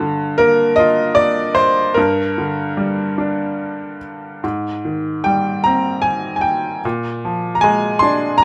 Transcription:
0, 0, Header, 1, 2, 480
1, 0, Start_track
1, 0, Tempo, 794702
1, 1193, Time_signature, 3, 2, 24, 8
1, 1675, Tempo, 828729
1, 3115, Tempo, 789474
1, 4555, Tempo, 756620
1, 5071, End_track
2, 0, Start_track
2, 0, Title_t, "Upright piano"
2, 0, Program_c, 0, 0
2, 0, Control_c, 0, 64, 127
2, 0, Note_on_c, 0, 43, 57
2, 0, Note_on_c, 0, 50, 44
2, 228, Note_on_c, 0, 70, 84
2, 237, Note_on_c, 0, 58, 47
2, 458, Note_on_c, 0, 75, 85
2, 477, Note_on_c, 0, 65, 52
2, 478, Note_off_c, 0, 70, 0
2, 688, Note_off_c, 0, 75, 0
2, 693, Note_on_c, 0, 74, 89
2, 930, Note_off_c, 0, 50, 0
2, 934, Note_on_c, 0, 72, 79
2, 950, Note_off_c, 0, 74, 0
2, 1168, Note_off_c, 0, 43, 0
2, 1170, Note_off_c, 0, 58, 0
2, 1173, Note_off_c, 0, 65, 0
2, 1174, Note_on_c, 0, 70, 72
2, 1191, Note_off_c, 0, 72, 0
2, 1192, Note_on_c, 0, 43, 60
2, 1200, Control_c, 0, 64, 0
2, 1321, Control_c, 0, 64, 127
2, 1438, Note_on_c, 0, 50, 39
2, 1674, Note_on_c, 0, 55, 43
2, 1910, Note_on_c, 0, 62, 41
2, 2362, Note_off_c, 0, 70, 0
2, 2372, Note_off_c, 0, 50, 0
2, 2613, Note_off_c, 0, 55, 0
2, 2614, Note_off_c, 0, 43, 0
2, 2615, Note_off_c, 0, 62, 0
2, 2638, Note_on_c, 0, 44, 45
2, 2644, Control_c, 0, 64, 0
2, 2762, Control_c, 0, 64, 127
2, 2878, Note_on_c, 0, 51, 35
2, 3103, Note_on_c, 0, 79, 69
2, 3115, Note_on_c, 0, 55, 38
2, 3336, Note_off_c, 0, 79, 0
2, 3344, Note_on_c, 0, 82, 74
2, 3360, Note_on_c, 0, 60, 43
2, 3575, Note_on_c, 0, 80, 69
2, 3599, Note_off_c, 0, 82, 0
2, 3775, Note_off_c, 0, 80, 0
2, 3785, Note_on_c, 0, 80, 48
2, 3812, Note_off_c, 0, 51, 0
2, 3816, Note_on_c, 0, 79, 61
2, 3831, Note_off_c, 0, 80, 0
2, 4049, Note_off_c, 0, 79, 0
2, 4052, Note_off_c, 0, 55, 0
2, 4053, Note_off_c, 0, 44, 0
2, 4056, Note_off_c, 0, 60, 0
2, 4082, Note_on_c, 0, 46, 57
2, 4084, Control_c, 0, 64, 0
2, 4178, Control_c, 0, 64, 127
2, 4324, Note_on_c, 0, 53, 44
2, 4508, Note_on_c, 0, 82, 54
2, 4545, Note_on_c, 0, 80, 81
2, 4552, Note_off_c, 0, 82, 0
2, 4559, Note_on_c, 0, 56, 50
2, 4787, Note_on_c, 0, 84, 85
2, 4800, Note_off_c, 0, 80, 0
2, 4806, Note_on_c, 0, 62, 50
2, 5030, Note_on_c, 0, 82, 88
2, 5038, Note_off_c, 0, 84, 0
2, 5071, Note_off_c, 0, 46, 0
2, 5071, Note_off_c, 0, 53, 0
2, 5071, Note_off_c, 0, 56, 0
2, 5071, Note_off_c, 0, 62, 0
2, 5071, Note_off_c, 0, 82, 0
2, 5071, End_track
0, 0, End_of_file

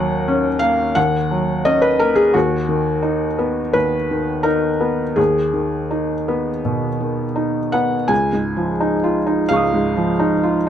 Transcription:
0, 0, Header, 1, 2, 480
1, 0, Start_track
1, 0, Tempo, 689655
1, 1630, Time_signature, 4, 2, 24, 8
1, 2112, Tempo, 723764
1, 5472, Tempo, 698487
1, 7251, End_track
2, 0, Start_track
2, 0, Title_t, "Felt piano"
2, 0, Program_c, 0, 0
2, 0, Control_c, 0, 64, 127
2, 0, Note_on_c, 0, 39, 66
2, 0, Note_on_c, 0, 54, 50
2, 0, Note_on_c, 0, 78, 96
2, 194, Note_on_c, 0, 61, 57
2, 336, Note_off_c, 0, 54, 0
2, 413, Note_on_c, 0, 77, 90
2, 424, Note_off_c, 0, 78, 0
2, 424, Note_on_c, 0, 58, 52
2, 577, Note_off_c, 0, 61, 0
2, 642, Note_off_c, 0, 39, 0
2, 662, Note_on_c, 0, 78, 93
2, 663, Note_off_c, 0, 77, 0
2, 670, Note_on_c, 0, 39, 55
2, 684, Control_c, 0, 64, 0
2, 791, Control_c, 0, 64, 127
2, 812, Note_off_c, 0, 58, 0
2, 913, Note_on_c, 0, 54, 47
2, 1147, Note_off_c, 0, 78, 0
2, 1149, Note_on_c, 0, 75, 91
2, 1153, Note_on_c, 0, 61, 54
2, 1264, Note_on_c, 0, 71, 83
2, 1270, Note_off_c, 0, 75, 0
2, 1295, Note_off_c, 0, 54, 0
2, 1387, Note_off_c, 0, 71, 0
2, 1388, Note_on_c, 0, 70, 87
2, 1399, Note_on_c, 0, 58, 53
2, 1499, Note_on_c, 0, 68, 85
2, 1509, Note_off_c, 0, 70, 0
2, 1535, Note_off_c, 0, 61, 0
2, 1602, Note_off_c, 0, 39, 0
2, 1625, Note_off_c, 0, 68, 0
2, 1627, Note_on_c, 0, 66, 83
2, 1634, Note_off_c, 0, 58, 0
2, 1634, Note_on_c, 0, 39, 63
2, 1641, Control_c, 0, 64, 0
2, 1771, Control_c, 0, 64, 127
2, 1870, Note_on_c, 0, 51, 50
2, 2105, Note_on_c, 0, 63, 50
2, 2252, Note_off_c, 0, 51, 0
2, 2345, Note_on_c, 0, 59, 50
2, 2489, Note_off_c, 0, 63, 0
2, 2562, Note_off_c, 0, 39, 0
2, 2576, Note_on_c, 0, 71, 81
2, 2584, Note_on_c, 0, 39, 50
2, 2585, Note_off_c, 0, 66, 0
2, 2727, Note_off_c, 0, 59, 0
2, 2825, Note_on_c, 0, 51, 45
2, 3038, Note_on_c, 0, 70, 79
2, 3047, Note_on_c, 0, 63, 48
2, 3051, Note_off_c, 0, 71, 0
2, 3201, Note_off_c, 0, 51, 0
2, 3286, Note_on_c, 0, 59, 46
2, 3435, Note_off_c, 0, 63, 0
2, 3509, Note_off_c, 0, 39, 0
2, 3521, Note_on_c, 0, 68, 67
2, 3528, Note_off_c, 0, 70, 0
2, 3529, Note_on_c, 0, 39, 54
2, 3533, Note_off_c, 0, 59, 0
2, 3548, Control_c, 0, 64, 0
2, 3657, Control_c, 0, 64, 127
2, 3770, Note_on_c, 0, 51, 41
2, 4017, Note_on_c, 0, 63, 44
2, 4167, Note_off_c, 0, 51, 0
2, 4266, Note_on_c, 0, 59, 44
2, 4410, Note_off_c, 0, 63, 0
2, 4481, Note_off_c, 0, 39, 0
2, 4508, Note_on_c, 0, 47, 40
2, 4653, Note_off_c, 0, 59, 0
2, 4744, Note_on_c, 0, 51, 38
2, 4893, Note_off_c, 0, 47, 0
2, 4978, Note_on_c, 0, 63, 44
2, 5132, Note_off_c, 0, 51, 0
2, 5221, Note_on_c, 0, 78, 79
2, 5225, Note_off_c, 0, 68, 0
2, 5228, Note_on_c, 0, 59, 42
2, 5371, Note_off_c, 0, 63, 0
2, 5457, Note_on_c, 0, 80, 78
2, 5462, Note_on_c, 0, 37, 58
2, 5466, Note_off_c, 0, 78, 0
2, 5469, Note_off_c, 0, 59, 0
2, 5485, Control_c, 0, 64, 0
2, 5604, Control_c, 0, 64, 127
2, 5628, Note_on_c, 0, 44, 40
2, 5792, Note_on_c, 0, 53, 45
2, 5887, Note_off_c, 0, 44, 0
2, 5955, Note_on_c, 0, 63, 50
2, 6049, Note_off_c, 0, 53, 0
2, 6115, Note_on_c, 0, 65, 50
2, 6210, Note_off_c, 0, 63, 0
2, 6272, Note_on_c, 0, 63, 51
2, 6369, Note_off_c, 0, 65, 0
2, 6400, Note_off_c, 0, 37, 0
2, 6424, Note_on_c, 0, 77, 94
2, 6425, Note_off_c, 0, 80, 0
2, 6436, Note_on_c, 0, 37, 54
2, 6457, Note_on_c, 0, 85, 39
2, 6477, Note_on_c, 0, 87, 40
2, 6528, Note_off_c, 0, 63, 0
2, 6597, Note_on_c, 0, 44, 50
2, 6753, Note_on_c, 0, 53, 48
2, 6852, Note_off_c, 0, 44, 0
2, 6911, Note_on_c, 0, 63, 52
2, 7009, Note_off_c, 0, 53, 0
2, 7074, Note_on_c, 0, 65, 50
2, 7167, Note_off_c, 0, 63, 0
2, 7251, Note_off_c, 0, 37, 0
2, 7251, Note_off_c, 0, 65, 0
2, 7251, Note_off_c, 0, 77, 0
2, 7251, Note_off_c, 0, 85, 0
2, 7251, Note_off_c, 0, 87, 0
2, 7251, End_track
0, 0, End_of_file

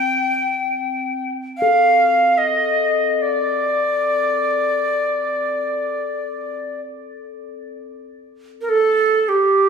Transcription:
0, 0, Header, 1, 3, 480
1, 0, Start_track
1, 0, Tempo, 500000
1, 9304, End_track
2, 0, Start_track
2, 0, Title_t, "Native American-style wooden flute"
2, 0, Program_c, 0, 77
2, 0, Note_on_c, 0, 79, 90
2, 1258, Note_off_c, 0, 79, 0
2, 1512, Note_on_c, 0, 77, 83
2, 2282, Note_on_c, 0, 75, 79
2, 2296, Note_off_c, 0, 77, 0
2, 3088, Note_on_c, 0, 74, 78
2, 3103, Note_off_c, 0, 75, 0
2, 6535, Note_off_c, 0, 74, 0
2, 8269, Note_on_c, 0, 70, 60
2, 8345, Note_on_c, 0, 69, 88
2, 8359, Note_off_c, 0, 70, 0
2, 8914, Note_on_c, 0, 67, 79
2, 8928, Note_off_c, 0, 69, 0
2, 9304, Note_off_c, 0, 67, 0
2, 9304, End_track
3, 0, Start_track
3, 0, Title_t, "Singing bowl"
3, 0, Program_c, 1, 14
3, 0, Note_on_c, 1, 60, 45
3, 1555, Note_on_c, 1, 69, 64
3, 4231, Note_off_c, 1, 60, 0
3, 8957, Note_off_c, 1, 69, 0
3, 9304, End_track
0, 0, End_of_file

